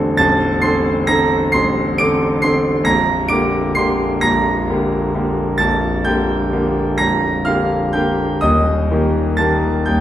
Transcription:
0.00 0.19 A0 medium
0.00 0.19 A1 medium
0.00 0.64 D3 medium
0.00 0.64 C4 medium
0.00 0.65 A4 medium
0.00 0.11 F#5 medium
0.00 0.14 F#6 loud
0.17 0.62 A0 medium
0.17 0.62 A1 medium
0.17 0.60 A5 medium
0.17 0.62 A6 loud
0.61 1.04 D3 soft
0.61 1.05 C4 soft
0.61 1.05 A4 soft
0.61 1.05 C6 medium
0.61 1.07 C7 medium
1.07 1.50 D3 medium
1.07 1.50 C4 soft
1.07 1.50 A4 medium
1.07 1.50 A#5 medium
1.07 1.53 A#6 loud
1.52 1.98 A0 medium
1.52 1.98 A1 medium
1.52 1.96 C6 medium
1.52 1.98 C7 loud
1.98 2.40 D3 soft
1.98 2.40 C4 medium
1.98 2.40 A4 medium
1.98 2.41 D6 medium
1.98 2.43 D7 loud
2.42 2.83 D3 soft
2.42 2.84 C4 soft
2.42 2.84 A4 medium
2.42 2.84 C6 medium
2.42 2.86 C7 medium
2.84 3.30 A#0 medium
2.84 3.28 A#1 medium
2.84 3.28 A#5 medium
2.84 3.30 A#6 medium
3.28 3.72 D3 soft
3.28 3.73 A#3 soft
3.28 3.73 G4 medium
3.28 3.72 D6 medium
3.28 3.75 D7 medium
3.75 4.20 D3 soft
3.75 4.20 A#3 soft
3.75 4.20 G4 soft
3.75 4.20 C6 medium
3.75 4.22 C7 medium
4.21 4.68 A#0 medium
4.21 4.68 A#1 medium
4.21 5.57 A#5 medium
4.21 5.60 A#6 medium
4.70 5.12 D3 soft
4.70 5.12 A#3 soft
4.70 5.12 G4 soft
5.14 5.56 D3 soft
5.14 5.57 A#3 soft
5.14 5.57 G4 soft
5.58 6.05 A#0 medium
5.58 6.05 A#1 medium
5.58 6.03 A5 medium
5.58 6.05 A6 medium
6.05 6.49 D3 soft
6.05 6.49 A#3 soft
6.05 6.49 G4 soft
6.05 6.95 G5 medium
6.05 6.98 G6 medium
6.53 6.95 D3 soft
6.53 6.96 A#3 soft
6.53 6.96 G4 soft
6.98 7.46 A#0 medium
6.98 7.46 A#1 soft
6.98 7.43 A#5 medium
6.98 7.46 A#6 medium
7.45 7.91 D3 soft
7.45 7.91 A#3 soft
7.45 7.91 G4 soft
7.45 7.91 F5 medium
7.45 7.94 F6 medium
7.93 8.38 D3 soft
7.93 8.39 A#3 soft
7.93 8.39 G4 soft
7.93 8.38 G5 medium
7.93 8.41 G6 medium
8.41 8.89 D#1 medium
8.41 8.89 D#2 medium
8.41 9.35 D#5 medium
8.41 9.39 D#6 medium
8.91 9.36 D#3 soft
8.91 9.36 A#3 soft
8.91 9.36 G4 soft
9.37 9.84 D#3 soft
9.37 9.85 A#3 soft
9.37 9.85 G4 soft
9.37 9.84 A5 medium
9.37 9.87 A6 medium
9.86 10.01 D#1 soft
9.86 10.01 D#2 soft
9.86 10.01 G5 medium
9.86 10.01 G6 medium

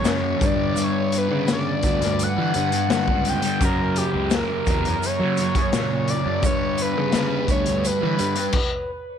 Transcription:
0.00 0.37 F#2 medium
0.00 0.22 C#3 medium
0.00 0.38 F#3 medium
0.00 0.19 F#3 loud
0.00 0.38 C#4 medium
0.00 0.48 C#5 loud
0.00 0.38 A#5 medium
0.05 0.32 F#2 medium
0.05 snare loud
0.05 closed hi-hat medium
0.05 shaker loud
0.20 0.38 C#3 medium
0.20 0.38 F#3 medium
0.37 0.72 G2 medium
0.37 0.57 D3 medium
0.37 0.55 G3 medium
0.37 3.57 B3 medium
0.37 3.57 B4 medium
0.37 kick loud
0.41 1.31 G2 medium
0.41 3.58 G3 medium
0.41 closed hi-hat medium
0.41 shaker medium
0.46 0.85 D5 medium
0.56 0.74 D3 medium
0.56 0.75 G3 medium
0.73 1.45 G2 medium
0.73 1.28 D3 medium
0.73 1.27 G3 medium
0.73 closed hi-hat medium
0.73 shaker loud
0.84 1.19 C#5 loud
1.12 closed hi-hat medium
1.12 shaker medium
1.18 1.51 B4 medium
1.28 1.72 C#3 medium
1.28 1.47 D3 medium
1.28 1.48 G3 medium
1.46 1.82 G2 medium
1.46 1.83 D3 medium
1.46 1.84 G3 medium
1.46 snare loud
1.46 closed hi-hat medium
1.46 shaker medium
1.53 2.24 D5 medium
1.83 2.24 D2 medium
1.83 2.36 G2 medium
1.83 2.01 D3 medium
1.83 2.00 G3 medium
1.83 kick medium
1.83 closed hi-hat medium
1.83 shaker medium
2.01 muted distorted electric guitar stroke soft
2.01 snare soft
2.01 closed hi-hat medium
2.19 3.31 F#5 loud
2.19 closed hi-hat medium
2.19 shaker medium
2.37 2.54 D3 medium
2.37 2.51 E3 medium
2.37 2.56 G3 medium
2.54 2.87 G2 medium
2.54 3.09 G2 medium
2.54 2.71 D3 medium
2.54 2.70 G3 medium
2.54 closed hi-hat medium
2.72 muted distorted electric guitar stroke soft
2.72 closed hi-hat medium
2.89 3.42 G2 medium
2.89 3.08 D3 medium
2.89 3.06 G3 medium
2.89 snare loud
2.89 closed hi-hat medium
2.89 shaker medium
3.07 3.35 C#2 medium
3.07 3.44 D3 medium
3.07 3.41 G3 medium
3.07 kick medium
3.25 closed hi-hat medium
3.25 shaker medium
3.29 3.63 G5 loud
3.42 3.60 D3 medium
3.42 3.58 G3 medium
3.42 closed hi-hat medium
3.59 4.31 F#2 medium
3.59 4.01 F#2 medium
3.59 4.14 C#3 medium
3.59 6.41 C#3 medium
3.59 4.12 F#3 medium
3.59 6.41 A#3 medium
3.59 6.40 A#4 medium
3.59 kick medium
3.59 closed hi-hat medium
3.59 shaker medium
3.65 3.99 A#4 loud
3.96 4.37 G4 medium
3.96 closed hi-hat medium
3.96 shaker medium
4.13 4.41 C#2 medium
4.13 4.32 C#3 medium
4.13 4.34 F#3 medium
4.31 4.66 F#2 medium
4.31 4.68 C#3 medium
4.31 snare loud
4.31 closed hi-hat medium
4.31 shaker medium
4.35 4.69 F#3 loud
4.35 5.07 A#4 medium
4.67 4.94 E2 medium
4.67 5.20 F#2 medium
4.67 4.85 C#3 medium
4.67 4.85 F#3 medium
4.67 kick medium
4.67 closed hi-hat medium
4.67 shaker medium
4.85 muted distorted electric guitar stroke soft
4.85 closed hi-hat medium
5.03 6.11 C#5 loud
5.03 closed hi-hat medium
5.03 shaker medium
5.19 5.38 C#3 medium
5.19 5.47 F#3 medium
5.19 5.40 F#3 medium
5.37 5.71 F#2 medium
5.37 5.54 C#3 medium
5.37 5.54 F#3 medium
5.37 closed hi-hat soft
5.37 shaker medium
5.55 muted distorted electric guitar stroke medium
5.55 kick medium
5.55 closed hi-hat medium
5.72 6.25 F#2 medium
5.72 6.13 A#2 medium
5.72 5.89 C#3 medium
5.72 5.87 F#3 medium
5.72 snare loud
5.72 closed hi-hat medium
5.72 shaker medium
5.88 6.25 C#3 medium
5.88 6.22 F#3 medium
6.08 6.44 D5 loud
6.08 closed hi-hat medium
6.08 shaker medium
6.23 6.39 F#2 medium
6.23 6.42 C#3 medium
6.23 6.40 F#3 medium
6.42 7.11 G2 medium
6.42 6.97 G2 medium
6.42 6.95 D3 medium
6.42 8.52 G3 medium
6.42 6.93 G3 loud
6.42 8.52 B3 medium
6.42 8.52 B4 medium
6.42 6.83 C#5 loud
6.42 kick loud
6.42 closed hi-hat medium
6.42 shaker loud
6.78 closed hi-hat medium
6.78 shaker medium
6.82 7.51 B4 loud
6.94 7.37 C#3 medium
6.94 7.12 D3 medium
6.94 7.14 G3 medium
7.12 7.47 G2 medium
7.12 7.49 D3 medium
7.12 7.50 G3 medium
7.12 snare loud
7.12 closed hi-hat medium
7.12 shaker medium
7.48 7.89 D2 medium
7.48 8.01 G2 medium
7.48 7.66 D3 medium
7.48 7.66 G3 medium
7.48 7.88 C#5 medium
7.48 kick medium
7.48 closed hi-hat medium
7.48 shaker medium
7.66 muted distorted electric guitar stroke soft
7.66 closed hi-hat medium
7.85 8.91 B4 medium
7.85 closed hi-hat medium
7.85 shaker medium
8.00 8.18 D3 medium
8.00 8.16 E3 medium
8.00 8.18 G3 medium
8.17 8.51 G2 medium
8.17 8.46 G2 medium
8.17 8.34 D3 medium
8.17 8.34 G3 medium
8.17 closed hi-hat medium
8.17 shaker medium
8.35 muted distorted electric guitar stroke soft
8.35 closed hi-hat medium
8.53 kick loud
8.53 crash medium

